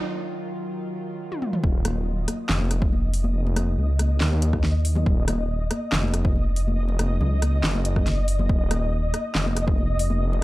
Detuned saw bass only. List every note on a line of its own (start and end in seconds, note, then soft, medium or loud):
1.64 2.26 D#1 loud
2.49 3.76 F1 loud
3.78 4.19 C#2 loud
4.21 5.05 D#2 loud
5.06 5.69 D#1 medium
5.92 7.19 F1 medium
7.21 7.62 C#2 medium
7.64 8.48 F#1 loud
8.49 9.12 D#1 loud
9.35 10.43 F1 loud